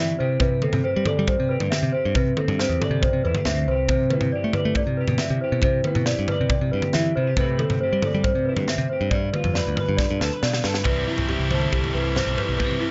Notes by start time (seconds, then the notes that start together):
Already playing: C3 E4 G4 D5 E5
0.00 E3
0.19 C3 G4 C5
0.40 C3 B4, kick, floor tom
0.62 C4 A4, mid tom
0.73 C3, floor tom
0.84 G4 C5
0.96 G3
1.06 A4 D5, floor tom, mid tom
1.19 G3
1.27 C3 C5, kick, floor tom
1.40 C3
1.49 G4 B4
1.60 G2, floor tom, mid tom
1.71 C4 E5, snare, mid tom
1.83 C3
1.93 G4 C5
2.05 G2
2.15 C3 B4, kick, floor tom
2.37 C4 A4, mid tom
2.48 G2, floor tom
2.59 G4 C5, snare
2.69 E2
2.80 A4, floor tom, mid tom
2.84 D5
2.91 C3
3.02 C3 C5, kick, floor tom
3.13 C3
3.24 E2 E4 B4
3.35 G4, floor tom, mid tom
3.45 D2 E5, snare, mid tom
3.49 C4
3.68 C2 G4 C5
3.88 C3 C5, kick, floor tom
4.10 E4 B4, mid tom
4.21 C3, floor tom
4.32 G4 D5
4.44 A3
4.53 B4, floor tom, mid tom
4.58 D5
4.65 A3
4.75 C3 D5, kick, floor tom
4.87 C3
4.97 G4 B4
5.08 B2, floor tom, mid tom
5.18 E5, snare, mid tom
5.24 E4
5.30 C3
5.41 G4 C5
5.52 B2
5.62 C3 C5, kick, floor tom
5.84 E4 B4, mid tom
5.95 B2, floor tom
6.06 G4 D5, snare
6.19 G2
6.28 B4 D5, floor tom, mid tom
6.41 C3
6.49 C3 D5, kick, floor tom
6.61 C3
6.72 G2 G4 B4
6.82 floor tom, mid tom
6.93 E3 E4 E5, snare, mid tom
7.16 C3 E4 C5
7.27 G4
7.37 C3 A3 C4 G4 B4, kick, floor tom
7.58 C4 A4, mid tom
7.70 C3, floor tom
7.81 G4 C5
7.93 G3
8.02 A4 D5, floor tom, mid tom
8.15 G3
8.24 C3 C5, kick, floor tom
8.35 C3
8.45 E4 B4
8.56 G2 G4, floor tom, mid tom
8.68 C4 E5, snare, mid tom
8.78 C3
8.90 G4 C5
9.01 G2
9.10 G2 G3 D5, kick, floor tom
9.33 F4 B4, mid tom
9.44 F2, floor tom
9.54 B4 D5, snare
9.67 D2
9.76 B4, floor tom, mid tom
9.80 B4
9.89 G2
9.97 D3 D5, kick, snare
10.11 G2
10.20 D2 A4 B4, snare
10.33 B4
10.43 B2 F4 D5, snare
10.53 snare
10.64 G2 A4 B4, snare
10.74 B4, snare
10.84 C2 C3 E3 G3 C4 E4 B4, kick, floor tom
11.07 G3 C4 E4
11.18 C2, floor tom
11.29 E3 G3 C4 E4 G4, floor tom
11.33 G4
11.39 C2
11.51 G3 C4 E4 A4 C5, floor tom, mid tom
11.61 mid tom
11.72 C2 C3 E3 G3 C4 E4 G4, kick, floor tom
11.84 floor tom
11.94 C2 G3 C4 E4 B4
12.16 E3 G3 C4 C5, snare, floor tom
12.20 E4
12.27 B1
12.37 B4, floor tom
12.41 E4
12.49 B1
12.58 C3 E3 G3 C4 E4 B4, kick, floor tom
12.71 floor tom
12.80 G3 C4 E4
12.85 E4